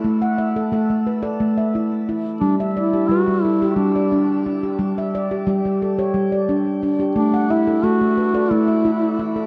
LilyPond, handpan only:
<<
  \new Staff \with { instrumentName = "Handpan" } { \time 7/8 \key g \lydian \tempo 4 = 89 << { a'16 fis''16 e''8 a'8 b'16 d''8 e''8. r8 | r16 e''16 d''8 b'8 a'8. d''8. r16 g'16~ | g'16 e''16 d''8 g'8 a'16 cis''8 d''8. r16 g'16~ | g'16 fis''16 e''8 a'8 b'16 d''8 e''8. r16 a'16 | } \\ { r8. a'8 a8 a'8 r16 e'8 e'8 | r8. g'8 g8 g'8 r16 d'8 d'8 | r8. g'8 g8 g'8 r16 d'8 d'8 | a8 r16 a'8 a8 a'8 r16 e'8 e'8 | } >> }
  \new Staff \with { instrumentName = "Handpan" } { \clef bass \time 7/8 \key g \lydian a8 r8 a4 a4. | g8 r8 g4 g4. | g8 r8 g4 g4. | r4 a4 a4. | }
>>